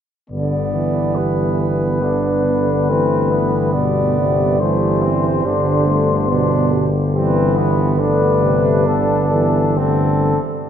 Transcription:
0.30 G1 D3 B3 D5
0.74 E3
1.16 G3 B4
1.60 B4
2.02 D3 B3 D4
2.46 D3
2.89 E3 A3 C4
3.32 B3
3.73 B2 G3 D5
4.18 C3
4.60 E3 A3 C5
5.03 C4
5.43 G1 D3 G3 D4
5.87 A3
6.28 B2 B3 D4
6.72 G3
7.15 E3 G3 C4 B4
7.57 B3
7.99 D3 A3 D4 B4
8.43 C3
8.85 D3 B3 A4
9.31 E3
9.77 D3 A3 C4 A4

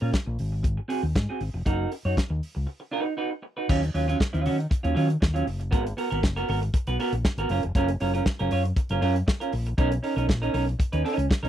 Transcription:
0.01 A#2 C#4 F4 A#4
0.12 muted clean electric guitar stroke, kick, snare, closed hi-hat
0.26 A#1, muted clean electric guitar stroke
0.39 G#1, open hi-hat
0.52 muted clean electric guitar stroke
0.63 muted clean electric guitar stroke, kick, closed hi-hat
0.77 muted clean electric guitar stroke
0.88 C4 F#4 G#4, open hi-hat
1.03 D#2, muted clean electric guitar stroke
1.15 G#2, muted clean electric guitar stroke, kick, snare, closed hi-hat
1.29 C4 F#4 G#4
1.41 G#1, muted clean electric guitar stroke, open hi-hat
1.54 F1, muted clean electric guitar stroke
1.66 F#1 D#4 F#4 A#4, kick, closed hi-hat
1.92 muted clean electric guitar stroke, open hi-hat
2.05 F#2 D#4 F#4 C#5
2.17 muted clean electric guitar stroke, kick, snare, closed hi-hat
2.30 D#2, muted clean electric guitar stroke
2.43 open hi-hat
2.55 C#2, muted clean electric guitar stroke
2.67 muted clean electric guitar stroke
2.80 muted clean electric guitar stroke
2.91 D#4 F#4 B4
3.05 muted clean electric guitar stroke
3.17 D#4 F#4 B4
3.31 muted clean electric guitar stroke
3.42 muted clean electric guitar stroke
3.57 D#4 F#4 B4
3.69 D#2 F#3 C#4 F4, kick, crash
3.82 muted clean electric guitar stroke, closed hi-hat
3.94 D#2 F#3 C#4 F4, open hi-hat
4.08 F#3 C#4 F4, closed hi-hat
4.20 muted clean electric guitar stroke, kick, snare
4.33 D#2 F#3 C#4 F4, closed hi-hat
4.46 D#3 F#3 C#4 F#4, open hi-hat
4.58 muted clean electric guitar stroke, closed hi-hat
4.70 muted clean electric guitar stroke, kick, closed hi-hat
4.83 D#2 F#3 C#4 F4, closed hi-hat
4.95 D#3 F#3 C#4 F4, open hi-hat
5.09 muted clean electric guitar stroke, closed hi-hat
5.21 D#2, muted clean electric guitar stroke, kick, snare
5.34 F#3 C#4 F4, closed hi-hat
5.46 F#1, muted clean electric guitar stroke, open hi-hat
5.60 muted clean electric guitar stroke, closed hi-hat
5.71 G#1 B3 F#4 A#4, kick, closed hi-hat
5.85 muted clean electric guitar stroke, closed hi-hat
5.97 B3 F#4 A#4, open hi-hat
6.10 G#1 B3 F#4 A#4, closed hi-hat
6.22 F#1, muted clean electric guitar stroke, kick, snare
6.36 B3 F#4 A#4, closed hi-hat
6.48 G#1 B3 F#4 A#4, open hi-hat
6.62 muted clean electric guitar stroke, closed hi-hat
6.74 muted clean electric guitar stroke, kick, closed hi-hat
6.87 B1 B3 F#4 B4, closed hi-hat
6.99 B3 F#4 A#4, open hi-hat
7.13 A#1, muted clean electric guitar stroke, closed hi-hat
7.25 muted clean electric guitar stroke, kick, snare
7.37 G#1 B3 F#4 A#4, closed hi-hat
7.49 F#1 C#4 F4 A#4, open hi-hat
7.63 F1, muted clean electric guitar stroke, closed hi-hat
7.75 F#1 C#4 F4 A#4, kick, closed hi-hat
7.88 muted clean electric guitar stroke, closed hi-hat
8.00 F#1 C#4 F4 A#4, open hi-hat
8.14 C#4 F4 A#4, closed hi-hat
8.25 muted clean electric guitar stroke, kick, snare
8.39 F#1 C#4 F4 A#4, closed hi-hat
8.51 F#2 C#4 F4 C#5, open hi-hat
8.65 muted clean electric guitar stroke, closed hi-hat
8.76 muted clean electric guitar stroke, kick, closed hi-hat
8.89 F#1 C#4 F4 A#4, closed hi-hat
9.01 F#2 C#4 F4 A#4, open hi-hat
9.15 muted clean electric guitar stroke, closed hi-hat
9.27 muted clean electric guitar stroke, kick, snare
9.40 C#4 F4 A#4, closed hi-hat
9.53 A#1, muted clean electric guitar stroke, open hi-hat
9.66 muted clean electric guitar stroke, closed hi-hat
9.78 B1 C#4 D#4 A#4, kick, closed hi-hat
9.91 muted clean electric guitar stroke, closed hi-hat
10.03 C#4 D#4 A#4, open hi-hat
10.16 B1 C#4 D#4 A#4, closed hi-hat
10.28 A#1, muted clean electric guitar stroke, kick, snare
10.42 C#4 D#4 A#4, closed hi-hat
10.53 B1 C#4 D#4 A#4, open hi-hat
10.67 muted clean electric guitar stroke, closed hi-hat
10.79 muted clean electric guitar stroke, kick, closed hi-hat
10.92 D#2 C#4 D#4 B4, closed hi-hat
11.04 C#4 D#4 A#4, open hi-hat
11.17 C#2, muted clean electric guitar stroke, closed hi-hat
11.29 muted clean electric guitar stroke, kick, snare
11.43 B1 C#4 D#4 A#4, closed hi-hat

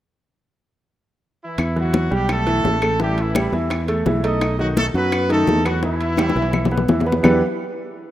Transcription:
1.43 E3 E4
1.58 E2, high bongo, high conga, high timbale, claves
1.76 E3 F#3 E4 F#4, high conga
1.94 high bongo, high conga, high timbale, low timbale
2.11 B1 G3 G4, high bongo, high conga
2.29 A3 A4, high bongo, high conga, high timbale, claves
2.47 E3 E4, high bongo, high conga, high timbale
2.64 A1, high bongo, low bongo, high conga, low timbale
2.82 A3 A4, high bongo, high timbale, claves
3.00 E3 G3 E4 G4, high bongo, high conga
3.18 E3 E4, high conga, high timbale
3.35 G3 G4, high bongo, high conga, high timbale, low timbale, claves
3.52 E2 E3 E4, high bongo, high conga
3.70 high bongo, high conga, high timbale, claves
3.88 A3 A4, high bongo, high conga, high timbale
4.06 B1 E3 E4, high bongo, low bongo, high conga, low timbale
4.23 A3 D#4 A4 D#5, high bongo, high conga, high timbale
4.41 high bongo, high conga, high timbale, claves
4.59 D#3 F#3 D#4 F#4, high conga
4.77 A3 A4, high bongo, high conga, high timbale, low timbale
4.94 F#2 F#3 B3 F#4 B4, high bongo, high conga
5.12 high bongo, high conga, high timbale, claves
5.29 D#3 A3 D#4 A4, high bongo, high conga, high timbale
5.47 E2, high bongo, low bongo, high conga, low timbale
5.65 F#3 B3 F#4 B4, high bongo, high timbale, claves
5.83 E3 E4, high bongo, high conga
6.01 high conga, high timbale
6.17 G3 G4, high bongo, high conga, high timbale, claves
6.29 high bongo, high timbale
6.36 B1 E3 E4, high conga
6.42 high timbale
6.53 low bongo, high conga, claves
6.65 low bongo, high timbale
6.71 B3 B4, high conga
6.78 low bongo
6.88 E2 E3 E4, low bongo, high conga
7.00 low bongo, low timbale
7.06 B3 B4, high conga
7.12 low bongo, low timbale
7.23 E2 E3 B3 D4 E4 G4 B4, low bongo, low conga, low timbale, claves

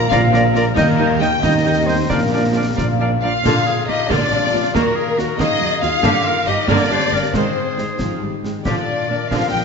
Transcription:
Already playing: A#2 F3 A#3 D4 F4 A#4 A#5
0.09 A#1 A#2 F3 F4 A#4 D5 F5 A#5, concert bass drum, snare
0.23 F5
0.31 F3 F4 A#4 D5 A#5, snare
0.45 F4
0.52 F3 A#3 D4 F4 A#4, snare
0.56 A#4 D5 A#5
0.67 A#3
0.74 D#2 D#3 G3 A#3 D#4 A#4 D#5 G5, concert bass drum, snare, crash
0.78 D#3
0.88 A#3
0.98 G3 D#4 A#4 D#5 G5
1.10 G4
1.17 G3 D#4 G4 A#4 D#5 G5
1.22 G5, snare
1.32 D#5
1.42 D#2 D#3 G3 D#4 A#4 D#5 G5, concert bass drum, snare
1.54 A#5
1.64 G3 D#4 A#4 D#5 G5
1.76 A#4
1.86 G3 C4 D#4 G4 A#4 C5 D#5 G5
1.98 D#4
2.09 A#1 A#2 F3 A#3 D4 A#4 D5 F5, concert bass drum, snare
2.22 F3
2.32 F3 A#3 D4 A#4 D5 F5
2.44 D4
2.53 F3 D4 F4 A#4 D5 F5
2.58 F5
2.66 A#4
2.75 A#1 A#2 F3 D4 A#4 D5 F5, concert bass drum, snare
2.80 F5
2.88 F5
2.99 F3 D4 A#4 D5 F5
3.11 F4
3.21 F3 D4 F4 A#4 D5 F5
3.34 A#3
3.44 A#1 A#2 D3 A#3 F4, concert bass drum, snare, crash
3.65 A#3 G#4
3.86 A#1 A#2 A#3 D#4 F4 G4 D#5
4.08 A#1 A#2 D3 A#3 D4 F4 D5, concert bass drum, snare
4.30 A#1 A#2 F3 D4
4.51 A#1 A#2 A#3 F4
4.73 D#2 D#3 A#3 F#4 A#4, concert bass drum, snare
4.96 A#3 G#4
5.16 D#2 A#3 F#4, snare
5.39 D#2 D#3 A#3 D#4 G#4 D#5, concert bass drum, snare
5.60 D#2 F#3 D#4
5.81 D#2 A#3 F4 F#4 F5, snare
6.03 G1 G2 D3 A#3 G4, concert bass drum, snare
6.25 A#3 A#4
6.45 G1 G2 A#3 D#4 G4 D#5
6.67 G1 G2 D3 A#3 D4 A#4 D5, concert bass drum, snare
6.90 G1 G2 D3 G3 D4 C5
7.10 G1 G2 A#3 G4 A#4
7.33 G#1 G#2 D#3 G#3 C4 G#4 C5, concert bass drum, snare
7.56 C4
7.78 G#1 G#2 G#3 C4 D#4 G#4, snare
7.99 G#1 G#2 F3 C4, concert bass drum, snare
8.22 G#1 G#2 D#3 G3
8.43 G#1 G#2 G#3 C4 G#4, snare
8.65 A#1 A#2 D3 F3 D4 G4 D5, concert bass drum, snare, crash
8.87 A#3 F4
9.08 A#1 A#2 A#3 D4 F4 A#4
9.12 A#3
9.28 A#1 A#2 D3 F3 A#3 F4 F5, concert bass drum, snare
9.51 A#1 A#2 F3 A#3 G4 G5

